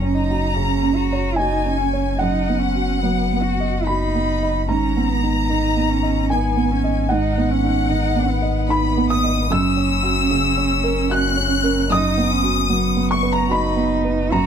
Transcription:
Already playing: sub bass F#1, felt piano F#2 A#5, cello C#4, violin section A#5
0.02 felt piano C#4
0.15 cello D#4
0.30 felt piano F#4
0.55 felt piano C#3, cello C#4
0.83 felt piano C#4
0.96 cello F#4
1.13 felt piano C#5
1.36 cello D#4, felt piano F#4 G#5, violin section G#5
1.66 felt piano C#4
1.77 cello C#4
1.93 felt piano C#5
2.19 felt piano F#2 F#5, cello D#4, violin section F#5
2.49 felt piano B3
2.59 cello C#4
2.76 felt piano F#4
3.01 felt piano F#3, cello B3
3.33 felt piano B3
3.42 cello F#4
3.60 felt piano D#5
3.85 cello D#4, felt piano F#4 B5, violin section B5
4.15 felt piano B3
4.43 felt piano D#5
4.68 sub bass G#1, felt piano G#2 A#5, cello C#4, violin section A#5
4.97 felt piano B3
5.10 cello B3
5.23 felt piano D#4
5.49 felt piano D#3, cello D#4
5.76 felt piano B3
5.90 cello C#4
6.03 felt piano D#5
6.30 cello B3, felt piano D#4 G#5, violin section G#5
6.57 felt piano B3
6.71 cello C#4
6.84 felt piano D#5
7.09 felt piano G#2 F#5, cello D#4, violin section F#5
7.37 felt piano B3
7.51 cello C#4
7.64 felt piano D#4
7.89 felt piano D#3, cello D#4
8.16 felt piano B3
8.30 cello B3
8.42 felt piano D#5
8.69 felt piano D#4 B5, violin section B5
8.97 felt piano B3
9.09 violin section D#6, felt piano D#6
9.24 felt piano D#5
9.49 sub bass F#1, felt piano F#2 E6, cello C#4, violin section E6
9.77 felt piano C#4
10.03 felt piano F#4
10.30 felt piano C#3
10.57 felt piano C#4
10.84 felt piano A#4
11.10 felt piano F#4 F#6, violin section F#6
11.37 felt piano C#4
11.64 felt piano A#4
11.90 felt piano F#2 D#6, cello D#4, violin section D#6
12.17 felt piano B3
12.31 cello C#4
12.43 felt piano F#4
12.69 felt piano F#3, cello B3
12.97 felt piano B3
13.10 violin section C#6, felt piano C#6
13.23 felt piano B4
13.31 violin section A#5, felt piano A#5
13.49 cello D#4, felt piano F#4 B5, violin section B5
13.76 felt piano B3
14.05 felt piano B4
14.31 sub bass F#1, felt piano F#2 A#5, cello F#4, violin section A#5

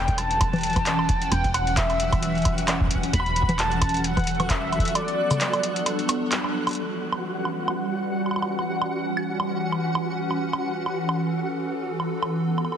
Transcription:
Already playing: fm bass E1, analog synth pad E3 B3 A4 G5, synth texture F#3 F#6, soft synth lead G5
0.08 kick, closed hi-hat
0.15 analog synth pad C#4, soft synth lead A5, closed hi-hat, high woodblock
0.31 closed hi-hat
0.41 kick, closed hi-hat, high woodblock
0.53 closed hi-hat, low conga
0.56 closed hi-hat
0.58 closed hi-hat
0.61 closed hi-hat
0.63 closed hi-hat
0.67 closed hi-hat
0.70 closed hi-hat
0.73 kick, closed hi-hat
0.76 closed hi-hat, low conga, high woodblock
0.81 analog synth pad F#5
0.86 clap, closed hi-hat
0.99 high woodblock
1.09 kick, closed hi-hat
1.22 closed hi-hat
1.31 fm bass E1, soft synth lead G5, closed hi-hat, high woodblock
1.44 kick, closed hi-hat
1.54 soft synth lead F#5, closed hi-hat, high woodblock
1.67 closed hi-hat
1.77 soft synth lead E5, kick, clap, closed hi-hat
1.90 closed hi-hat, high woodblock
2.00 closed hi-hat
2.12 kick, closed hi-hat, high woodblock
2.23 closed hi-hat
2.35 closed hi-hat
2.38 closed hi-hat
2.42 closed hi-hat
2.45 kick, closed hi-hat, high woodblock
2.58 closed hi-hat
2.68 clap, closed hi-hat, high woodblock
2.81 kick
2.87 kick, closed hi-hat
2.95 kick
3.03 closed hi-hat
3.13 fm bass E1, soft synth lead B5, kick, closed hi-hat
3.20 high woodblock
3.26 closed hi-hat
3.36 closed hi-hat
3.42 analog synth pad A4, kick
3.49 closed hi-hat, low conga
3.59 soft synth lead A5, clap, closed hi-hat, high woodblock
3.72 closed hi-hat
3.82 kick, closed hi-hat, high woodblock
3.89 closed hi-hat
3.94 closed hi-hat
3.97 closed hi-hat
4.04 soft synth lead F#5, closed hi-hat
4.17 kick, closed hi-hat, low conga, high woodblock
4.19 closed hi-hat
4.24 closed hi-hat
4.27 closed hi-hat
4.35 closed hi-hat
4.40 closed hi-hat, low conga, high woodblock
4.50 soft synth lead E5, kick, clap, closed hi-hat
4.72 closed hi-hat, high woodblock
4.79 kick, closed hi-hat
4.85 closed hi-hat
4.88 closed hi-hat
4.95 analog synth pad B3, soft synth lead D5, closed hi-hat, high woodblock
5.08 closed hi-hat
5.31 closed hi-hat, low conga, high woodblock, shaker
5.41 clap, closed hi-hat
5.53 analog synth pad D4, closed hi-hat, high woodblock
5.63 closed hi-hat
5.76 closed hi-hat
5.86 closed hi-hat, high woodblock
5.99 closed hi-hat
6.09 closed hi-hat, high woodblock, shaker
6.32 clap, closed hi-hat
6.44 high woodblock
6.67 closed hi-hat, high woodblock
6.69 closed hi-hat
6.71 closed hi-hat
6.73 closed hi-hat
6.75 analog synth pad E3, synth texture F#4 F#5, closed hi-hat
7.04 analog synth pad C#4
7.12 high woodblock
7.22 analog synth pad G3
7.40 analog synth pad F#5
7.45 high woodblock
7.68 high woodblock
8.26 high woodblock
8.31 high woodblock
8.36 high woodblock
8.42 high woodblock
8.59 high woodblock
8.82 high woodblock
9.17 high woodblock
9.40 high woodblock
9.72 high woodblock
9.95 high woodblock
10.31 high woodblock
10.53 high woodblock
10.86 high woodblock
10.91 analog synth pad A4
11.09 high woodblock
12.00 high woodblock
12.22 high woodblock
12.33 analog synth pad B3
12.58 high woodblock
12.65 high woodblock
12.72 analog synth pad D4, high woodblock

